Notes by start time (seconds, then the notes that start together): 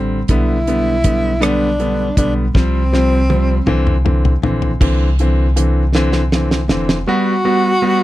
Already playing: A1 D3 G3 C4
0.28 B1 D3 G3 B3 E4, kick, closed hi-hat
0.67 D3 G3 B3, closed hi-hat
1.04 D3 G3 B3, kick, closed hi-hat
1.40 D3 G3 B3 D4, cross-stick, closed hi-hat
1.80 D3 G3 B3, closed hi-hat
2.17 B1 D3 G3 B3 D4, kick, closed hi-hat
2.54 C2 F3 G3 C4, kick, snare
2.93 F3 G3 C4, snare
3.29 F3 G3 C4, high tom
3.66 C2 D3 E3 C4, mid tom
3.87 mid tom
4.05 D3 E3 C4, mid tom
4.25 floor tom
4.42 A#1 D3 E3 C4, floor tom
4.62 floor tom
4.80 C2 D3 E3 C4, kick, crash
5.19 D3 E3 C4, closed hi-hat
5.56 D3 E3 C4, closed hi-hat
5.95 D3 E3 C4, snare
6.12 snare
6.32 D3 E3 C4, snare
6.51 snare
6.68 F1 D3 E3 C4, snare
6.89 snare
7.07 G3 B3 F#4
7.45 G3 B3 F#4
7.82 G3 B3 F#4